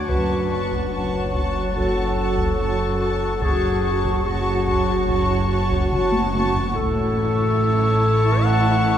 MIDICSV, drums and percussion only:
0, 0, Header, 1, 2, 480
1, 0, Start_track
1, 0, Key_signature, 3, "minor"
1, 0, Tempo, 833333
1, 49, Time_signature, 4, 2, 24, 8
1, 5172, End_track
2, 0, Start_track
2, 0, Title_t, "Taiko and cinematic ensemble drums"
2, 52, Note_on_c, 9, 41, 70
2, 109, Note_off_c, 9, 41, 0
2, 412, Note_on_c, 9, 41, 56
2, 470, Note_off_c, 9, 41, 0
2, 773, Note_on_c, 9, 41, 59
2, 831, Note_off_c, 9, 41, 0
2, 1012, Note_on_c, 9, 41, 59
2, 1070, Note_off_c, 9, 41, 0
2, 1370, Note_on_c, 9, 41, 62
2, 1428, Note_off_c, 9, 41, 0
2, 1969, Note_on_c, 9, 41, 71
2, 2027, Note_off_c, 9, 41, 0
2, 2331, Note_on_c, 9, 41, 60
2, 2389, Note_off_c, 9, 41, 0
2, 2692, Note_on_c, 9, 41, 63
2, 2750, Note_off_c, 9, 41, 0
2, 2930, Note_on_c, 9, 41, 63
2, 2988, Note_off_c, 9, 41, 0
2, 3292, Note_on_c, 9, 41, 63
2, 3349, Note_off_c, 9, 41, 0
2, 3411, Note_on_c, 9, 47, 66
2, 3469, Note_off_c, 9, 47, 0
2, 3529, Note_on_c, 9, 48, 71
2, 3586, Note_off_c, 9, 48, 0
2, 3652, Note_on_c, 9, 48, 71
2, 3709, Note_off_c, 9, 48, 0
2, 3772, Note_on_c, 9, 43, 75
2, 3829, Note_off_c, 9, 43, 0
2, 3895, Note_on_c, 9, 41, 56
2, 3952, Note_off_c, 9, 41, 0
2, 5172, End_track
0, 0, End_of_file